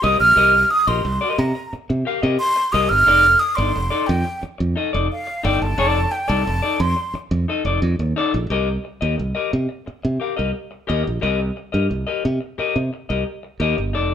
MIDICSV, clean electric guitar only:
0, 0, Header, 1, 3, 480
1, 0, Start_track
1, 0, Tempo, 678733
1, 257, Time_signature, 4, 2, 24, 8
1, 10002, End_track
2, 0, Start_track
2, 0, Title_t, "Clean electric guitar"
2, 0, Program_c, 0, 27
2, 14, Note_on_c, 0, 67, 76
2, 22, Note_on_c, 0, 70, 80
2, 24, Note_on_c, 0, 75, 90
2, 126, Note_off_c, 0, 75, 0
2, 134, Note_off_c, 0, 70, 0
2, 138, Note_off_c, 0, 67, 0
2, 253, Note_on_c, 0, 67, 89
2, 259, Note_on_c, 0, 70, 97
2, 263, Note_on_c, 0, 75, 86
2, 377, Note_off_c, 0, 67, 0
2, 380, Note_off_c, 0, 70, 0
2, 382, Note_off_c, 0, 75, 0
2, 616, Note_on_c, 0, 75, 66
2, 623, Note_on_c, 0, 70, 67
2, 625, Note_on_c, 0, 67, 52
2, 712, Note_off_c, 0, 75, 0
2, 715, Note_off_c, 0, 70, 0
2, 716, Note_off_c, 0, 67, 0
2, 855, Note_on_c, 0, 75, 78
2, 859, Note_on_c, 0, 70, 63
2, 865, Note_on_c, 0, 67, 55
2, 967, Note_off_c, 0, 67, 0
2, 971, Note_off_c, 0, 70, 0
2, 972, Note_off_c, 0, 75, 0
2, 1451, Note_on_c, 0, 67, 59
2, 1459, Note_on_c, 0, 70, 63
2, 1464, Note_on_c, 0, 77, 72
2, 1548, Note_off_c, 0, 67, 0
2, 1552, Note_off_c, 0, 70, 0
2, 1554, Note_off_c, 0, 77, 0
2, 1573, Note_on_c, 0, 75, 71
2, 1580, Note_on_c, 0, 70, 64
2, 1585, Note_on_c, 0, 67, 57
2, 1669, Note_off_c, 0, 75, 0
2, 1672, Note_off_c, 0, 70, 0
2, 1675, Note_off_c, 0, 67, 0
2, 1929, Note_on_c, 0, 67, 82
2, 1936, Note_on_c, 0, 70, 89
2, 1940, Note_on_c, 0, 75, 98
2, 2042, Note_off_c, 0, 75, 0
2, 2051, Note_off_c, 0, 70, 0
2, 2053, Note_off_c, 0, 67, 0
2, 2168, Note_on_c, 0, 63, 79
2, 2176, Note_on_c, 0, 69, 103
2, 2180, Note_on_c, 0, 74, 91
2, 2292, Note_off_c, 0, 63, 0
2, 2296, Note_off_c, 0, 69, 0
2, 2298, Note_off_c, 0, 74, 0
2, 2523, Note_on_c, 0, 74, 63
2, 2532, Note_on_c, 0, 69, 66
2, 2538, Note_on_c, 0, 63, 60
2, 2623, Note_off_c, 0, 74, 0
2, 2627, Note_off_c, 0, 69, 0
2, 2631, Note_off_c, 0, 63, 0
2, 2761, Note_on_c, 0, 74, 72
2, 2766, Note_on_c, 0, 69, 88
2, 2771, Note_on_c, 0, 63, 73
2, 2880, Note_off_c, 0, 63, 0
2, 2885, Note_off_c, 0, 69, 0
2, 2888, Note_off_c, 0, 74, 0
2, 3364, Note_on_c, 0, 63, 66
2, 3369, Note_on_c, 0, 69, 67
2, 3373, Note_on_c, 0, 75, 70
2, 3462, Note_off_c, 0, 63, 0
2, 3465, Note_off_c, 0, 69, 0
2, 3467, Note_off_c, 0, 75, 0
2, 3487, Note_on_c, 0, 74, 69
2, 3494, Note_on_c, 0, 69, 61
2, 3499, Note_on_c, 0, 63, 59
2, 3584, Note_off_c, 0, 74, 0
2, 3587, Note_off_c, 0, 69, 0
2, 3590, Note_off_c, 0, 63, 0
2, 3843, Note_on_c, 0, 63, 89
2, 3849, Note_on_c, 0, 69, 87
2, 3856, Note_on_c, 0, 74, 94
2, 3959, Note_off_c, 0, 74, 0
2, 3967, Note_off_c, 0, 69, 0
2, 3968, Note_off_c, 0, 63, 0
2, 4085, Note_on_c, 0, 63, 87
2, 4091, Note_on_c, 0, 69, 90
2, 4094, Note_on_c, 0, 74, 97
2, 4228, Note_off_c, 0, 63, 0
2, 4231, Note_off_c, 0, 69, 0
2, 4233, Note_off_c, 0, 74, 0
2, 4440, Note_on_c, 0, 74, 76
2, 4444, Note_on_c, 0, 69, 71
2, 4450, Note_on_c, 0, 63, 61
2, 4540, Note_off_c, 0, 74, 0
2, 4542, Note_off_c, 0, 69, 0
2, 4545, Note_off_c, 0, 63, 0
2, 4685, Note_on_c, 0, 74, 74
2, 4692, Note_on_c, 0, 69, 74
2, 4697, Note_on_c, 0, 63, 65
2, 4798, Note_off_c, 0, 63, 0
2, 4804, Note_off_c, 0, 69, 0
2, 4807, Note_off_c, 0, 74, 0
2, 5292, Note_on_c, 0, 63, 66
2, 5298, Note_on_c, 0, 69, 72
2, 5301, Note_on_c, 0, 75, 67
2, 5386, Note_off_c, 0, 63, 0
2, 5389, Note_off_c, 0, 69, 0
2, 5391, Note_off_c, 0, 75, 0
2, 5415, Note_on_c, 0, 74, 67
2, 5423, Note_on_c, 0, 69, 65
2, 5427, Note_on_c, 0, 63, 53
2, 5508, Note_off_c, 0, 74, 0
2, 5512, Note_off_c, 0, 69, 0
2, 5514, Note_off_c, 0, 63, 0
2, 5773, Note_on_c, 0, 63, 106
2, 5778, Note_on_c, 0, 69, 95
2, 5783, Note_on_c, 0, 74, 101
2, 5890, Note_off_c, 0, 74, 0
2, 5893, Note_off_c, 0, 63, 0
2, 5896, Note_off_c, 0, 69, 0
2, 6013, Note_on_c, 0, 67, 77
2, 6020, Note_on_c, 0, 70, 92
2, 6024, Note_on_c, 0, 75, 91
2, 6134, Note_off_c, 0, 67, 0
2, 6137, Note_off_c, 0, 70, 0
2, 6139, Note_off_c, 0, 75, 0
2, 6371, Note_on_c, 0, 75, 64
2, 6377, Note_on_c, 0, 70, 53
2, 6379, Note_on_c, 0, 67, 50
2, 6466, Note_off_c, 0, 75, 0
2, 6470, Note_off_c, 0, 67, 0
2, 6470, Note_off_c, 0, 70, 0
2, 6610, Note_on_c, 0, 75, 72
2, 6614, Note_on_c, 0, 70, 65
2, 6621, Note_on_c, 0, 67, 54
2, 6721, Note_off_c, 0, 67, 0
2, 6726, Note_off_c, 0, 70, 0
2, 6730, Note_off_c, 0, 75, 0
2, 7211, Note_on_c, 0, 67, 63
2, 7219, Note_on_c, 0, 70, 58
2, 7223, Note_on_c, 0, 77, 63
2, 7308, Note_off_c, 0, 67, 0
2, 7312, Note_off_c, 0, 70, 0
2, 7314, Note_off_c, 0, 77, 0
2, 7330, Note_on_c, 0, 75, 64
2, 7335, Note_on_c, 0, 70, 63
2, 7340, Note_on_c, 0, 67, 52
2, 7428, Note_off_c, 0, 75, 0
2, 7430, Note_off_c, 0, 70, 0
2, 7433, Note_off_c, 0, 67, 0
2, 7688, Note_on_c, 0, 67, 76
2, 7693, Note_on_c, 0, 70, 73
2, 7699, Note_on_c, 0, 75, 94
2, 7801, Note_off_c, 0, 75, 0
2, 7810, Note_off_c, 0, 70, 0
2, 7814, Note_off_c, 0, 67, 0
2, 7929, Note_on_c, 0, 67, 73
2, 7933, Note_on_c, 0, 70, 91
2, 7938, Note_on_c, 0, 75, 84
2, 8055, Note_off_c, 0, 67, 0
2, 8057, Note_off_c, 0, 70, 0
2, 8059, Note_off_c, 0, 75, 0
2, 8290, Note_on_c, 0, 75, 58
2, 8295, Note_on_c, 0, 70, 59
2, 8300, Note_on_c, 0, 67, 52
2, 8389, Note_off_c, 0, 75, 0
2, 8392, Note_off_c, 0, 70, 0
2, 8394, Note_off_c, 0, 67, 0
2, 8533, Note_on_c, 0, 75, 76
2, 8538, Note_on_c, 0, 70, 64
2, 8543, Note_on_c, 0, 67, 61
2, 8651, Note_off_c, 0, 67, 0
2, 8653, Note_off_c, 0, 70, 0
2, 8655, Note_off_c, 0, 75, 0
2, 8897, Note_on_c, 0, 67, 71
2, 8901, Note_on_c, 0, 70, 90
2, 8907, Note_on_c, 0, 75, 82
2, 9020, Note_off_c, 0, 67, 0
2, 9023, Note_off_c, 0, 70, 0
2, 9026, Note_off_c, 0, 75, 0
2, 9258, Note_on_c, 0, 75, 68
2, 9262, Note_on_c, 0, 70, 59
2, 9268, Note_on_c, 0, 67, 56
2, 9355, Note_off_c, 0, 75, 0
2, 9357, Note_off_c, 0, 70, 0
2, 9360, Note_off_c, 0, 67, 0
2, 9616, Note_on_c, 0, 67, 75
2, 9619, Note_on_c, 0, 70, 79
2, 9627, Note_on_c, 0, 75, 94
2, 9730, Note_off_c, 0, 75, 0
2, 9738, Note_off_c, 0, 70, 0
2, 9741, Note_off_c, 0, 67, 0
2, 9853, Note_on_c, 0, 63, 74
2, 9862, Note_on_c, 0, 69, 79
2, 9864, Note_on_c, 0, 74, 81
2, 9980, Note_off_c, 0, 63, 0
2, 9985, Note_off_c, 0, 69, 0
2, 9986, Note_off_c, 0, 74, 0
2, 10002, End_track
3, 0, Start_track
3, 0, Title_t, "Muted clean electric guitar strokes"
3, 135, Note_on_c, 9, 29, 51
3, 205, Note_off_c, 9, 29, 0
3, 496, Note_on_c, 9, 29, 39
3, 567, Note_off_c, 9, 29, 0
3, 733, Note_on_c, 9, 29, 35
3, 804, Note_off_c, 9, 29, 0
3, 976, Note_on_c, 9, 29, 35
3, 1047, Note_off_c, 9, 29, 0
3, 1097, Note_on_c, 9, 29, 43
3, 1167, Note_off_c, 9, 29, 0
3, 1222, Note_on_c, 9, 29, 34
3, 1293, Note_off_c, 9, 29, 0
3, 1340, Note_on_c, 9, 29, 49
3, 1411, Note_off_c, 9, 29, 0
3, 1810, Note_on_c, 9, 29, 47
3, 1881, Note_off_c, 9, 29, 0
3, 2051, Note_on_c, 9, 29, 51
3, 2122, Note_off_c, 9, 29, 0
3, 2410, Note_on_c, 9, 29, 37
3, 2481, Note_off_c, 9, 29, 0
3, 2648, Note_on_c, 9, 29, 39
3, 2718, Note_off_c, 9, 29, 0
3, 2889, Note_on_c, 9, 29, 37
3, 2959, Note_off_c, 9, 29, 0
3, 3006, Note_on_c, 9, 29, 41
3, 3077, Note_off_c, 9, 29, 0
3, 3123, Note_on_c, 9, 29, 42
3, 3194, Note_off_c, 9, 29, 0
3, 3241, Note_on_c, 9, 29, 46
3, 3312, Note_off_c, 9, 29, 0
3, 3727, Note_on_c, 9, 29, 50
3, 3797, Note_off_c, 9, 29, 0
3, 3968, Note_on_c, 9, 29, 52
3, 4038, Note_off_c, 9, 29, 0
3, 4323, Note_on_c, 9, 29, 49
3, 4394, Note_off_c, 9, 29, 0
3, 4568, Note_on_c, 9, 29, 45
3, 4638, Note_off_c, 9, 29, 0
3, 4806, Note_on_c, 9, 29, 39
3, 4877, Note_off_c, 9, 29, 0
3, 4925, Note_on_c, 9, 29, 48
3, 4995, Note_off_c, 9, 29, 0
3, 5050, Note_on_c, 9, 29, 44
3, 5121, Note_off_c, 9, 29, 0
3, 5172, Note_on_c, 9, 29, 48
3, 5243, Note_off_c, 9, 29, 0
3, 5657, Note_on_c, 9, 29, 51
3, 5727, Note_off_c, 9, 29, 0
3, 5899, Note_on_c, 9, 29, 41
3, 5969, Note_off_c, 9, 29, 0
3, 6250, Note_on_c, 9, 29, 33
3, 6321, Note_off_c, 9, 29, 0
3, 6488, Note_on_c, 9, 29, 36
3, 6559, Note_off_c, 9, 29, 0
3, 6730, Note_on_c, 9, 29, 33
3, 6801, Note_off_c, 9, 29, 0
3, 6852, Note_on_c, 9, 29, 45
3, 6923, Note_off_c, 9, 29, 0
3, 6975, Note_on_c, 9, 29, 33
3, 7045, Note_off_c, 9, 29, 0
3, 7096, Note_on_c, 9, 29, 40
3, 7167, Note_off_c, 9, 29, 0
3, 7573, Note_on_c, 9, 29, 40
3, 7644, Note_off_c, 9, 29, 0
3, 7809, Note_on_c, 9, 29, 40
3, 7880, Note_off_c, 9, 29, 0
3, 8177, Note_on_c, 9, 29, 34
3, 8247, Note_off_c, 9, 29, 0
3, 8417, Note_on_c, 9, 29, 31
3, 8488, Note_off_c, 9, 29, 0
3, 8659, Note_on_c, 9, 29, 34
3, 8730, Note_off_c, 9, 29, 0
3, 8773, Note_on_c, 9, 29, 42
3, 8844, Note_off_c, 9, 29, 0
3, 9142, Note_on_c, 9, 29, 42
3, 9213, Note_off_c, 9, 29, 0
3, 9499, Note_on_c, 9, 29, 42
3, 9570, Note_off_c, 9, 29, 0
3, 9738, Note_on_c, 9, 29, 54
3, 9809, Note_off_c, 9, 29, 0
3, 10002, End_track
0, 0, End_of_file